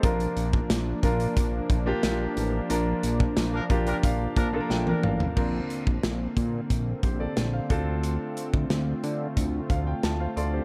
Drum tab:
CC |----------------|----------------|x---------------|----------------|
HH |xxx-x-xxx-x-x-x-|x-x-x-xxx-x-----|--x-x-x-x-x-x-x-|x-x-x-x-x-x-x-x-|
TB |----x-------x---|----x-----------|----------------|----------------|
SD |----o-------o---|----o-------o---|----o-------o---|----o-------o---|
T1 |----------------|-------------o--|----------------|----------------|
T2 |----------------|--------------o-|----------------|----------------|
FT |----------------|---------------o|----------------|----------------|
BD |o--o--o-o-o-----|---o--o-o-o-----|o--o--o-o-o---o-|---o----o-o-----|